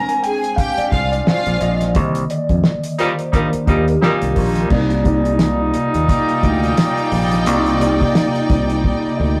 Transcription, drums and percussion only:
0.09 closed hi-hat
0.24 closed hi-hat
0.44 closed hi-hat
0.58 kick, closed hi-hat
0.77 closed hi-hat
0.92 kick, closed hi-hat
1.13 closed hi-hat
1.27 snare
1.46 closed hi-hat
1.61 closed hi-hat
1.81 snare, closed hi-hat
1.95 kick, closed hi-hat
2.15 closed hi-hat
2.30 closed hi-hat
2.49 kick, closed hi-hat
2.64 snare
2.84 closed hi-hat
2.99 closed hi-hat
3.19 closed hi-hat
3.33 kick, closed hi-hat
3.53 closed hi-hat
3.67 kick, closed hi-hat
3.88 closed hi-hat
4.03 snare
4.22 closed hi-hat
4.36 kick, open hi-hat
4.56 snare, closed hi-hat
4.70 kick, crash
4.90 closed hi-hat
5.05 kick, closed hi-hat
5.25 closed hi-hat
5.39 snare, closed hi-hat
5.74 closed hi-hat
5.94 closed hi-hat
6.09 kick, closed hi-hat
6.29 closed hi-hat
6.43 kick, closed hi-hat
6.64 closed hi-hat
6.77 snare, closed hi-hat
6.97 closed hi-hat
7.12 open hi-hat
7.31 snare, closed hi-hat
7.46 closed hi-hat
7.66 closed hi-hat
7.81 closed hi-hat
8.01 kick, closed hi-hat
8.15 snare, closed hi-hat
8.35 closed hi-hat
8.50 kick, closed hi-hat
8.70 closed hi-hat
8.84 kick

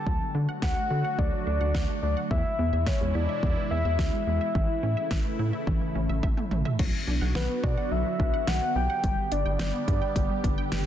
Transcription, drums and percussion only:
0.07 kick
0.62 kick, snare
1.19 kick
1.75 kick, snare
2.31 kick
2.87 kick, snare
3.43 kick
3.99 kick, snare
4.55 kick
5.11 kick, snare
5.67 kick
6.23 kick, high tom
6.37 mid tom
6.51 mid tom
6.65 floor tom
6.79 kick, crash
7.35 snare
7.64 kick
8.20 kick
8.47 snare
9.04 kick, closed hi-hat
9.32 closed hi-hat
9.59 snare, closed hi-hat
9.88 kick, closed hi-hat
10.16 kick, closed hi-hat
10.44 kick, closed hi-hat
10.72 snare, closed hi-hat

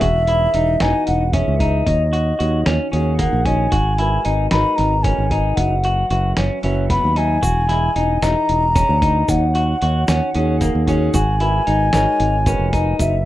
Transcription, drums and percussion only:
0.01 kick, closed hi-hat
0.27 closed hi-hat
0.54 closed hi-hat
0.80 snare, closed hi-hat
1.07 closed hi-hat
1.33 kick, closed hi-hat
1.60 kick, closed hi-hat
1.87 kick, closed hi-hat
2.13 closed hi-hat
2.40 closed hi-hat
2.66 snare, closed hi-hat
2.93 closed hi-hat
3.19 kick, closed hi-hat
3.46 kick, closed hi-hat
3.72 kick, closed hi-hat
3.98 closed hi-hat
4.25 closed hi-hat
4.51 snare, closed hi-hat
4.78 snare, closed hi-hat
5.04 kick, closed hi-hat
5.31 kick, closed hi-hat
5.57 kick, closed hi-hat
5.84 closed hi-hat
6.10 closed hi-hat
6.37 snare, closed hi-hat
6.63 closed hi-hat
6.90 kick, snare, closed hi-hat
7.16 closed hi-hat
7.43 kick, closed hi-hat, shaker
7.69 snare, closed hi-hat
7.96 closed hi-hat
8.22 snare, closed hi-hat, shaker
8.49 closed hi-hat
8.76 kick, closed hi-hat, shaker
9.02 kick, closed hi-hat, shaker
9.29 kick, closed hi-hat, shaker
9.55 closed hi-hat
9.82 closed hi-hat
10.08 snare, closed hi-hat, shaker
10.34 closed hi-hat
10.61 kick, closed hi-hat, shaker
10.88 kick, closed hi-hat, shaker
11.14 kick, closed hi-hat, shaker
11.40 closed hi-hat
11.67 closed hi-hat
11.93 snare, closed hi-hat, shaker
12.20 closed hi-hat
12.46 kick, closed hi-hat, shaker
12.73 kick, closed hi-hat, shaker
12.99 kick, closed hi-hat, shaker

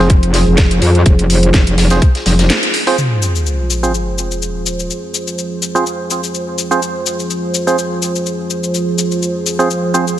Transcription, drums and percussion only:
0.10 kick, closed hi-hat
0.23 closed hi-hat
0.34 snare, closed hi-hat, open hi-hat
0.57 kick, snare, closed hi-hat
0.71 closed hi-hat
0.82 closed hi-hat, open hi-hat
0.95 closed hi-hat
1.06 kick, closed hi-hat
1.19 closed hi-hat
1.30 closed hi-hat, open hi-hat
1.43 closed hi-hat
1.54 kick, snare, closed hi-hat
1.67 closed hi-hat
1.78 snare, closed hi-hat, open hi-hat
1.90 snare, closed hi-hat
2.02 kick, closed hi-hat
2.15 snare, closed hi-hat
2.26 snare, closed hi-hat, open hi-hat
2.39 snare, closed hi-hat
2.50 snare, closed hi-hat
2.63 snare, closed hi-hat
2.74 closed hi-hat, open hi-hat
2.87 open hi-hat
2.98 cabasa
3.22 cabasa
3.35 cabasa
3.46 cabasa
3.70 cabasa
3.83 cabasa
3.94 cabasa
4.18 cabasa
4.31 cabasa
4.42 cabasa
4.66 cabasa
4.79 cabasa
4.90 cabasa
5.14 cabasa
5.28 cabasa
5.38 cabasa
5.62 cabasa
5.75 cabasa
5.86 cabasa
6.11 cabasa
6.24 cabasa
6.34 cabasa
6.58 cabasa
6.71 cabasa
6.82 cabasa
7.06 cabasa
7.20 cabasa
7.30 cabasa
7.54 cabasa
7.67 cabasa
7.78 cabasa
8.02 cabasa
8.15 cabasa
8.26 cabasa
8.50 cabasa
8.63 cabasa
8.74 cabasa
8.98 cabasa
9.12 cabasa
9.22 cabasa
9.46 cabasa
9.60 cabasa
9.70 cabasa
9.94 cabasa
10.07 cabasa

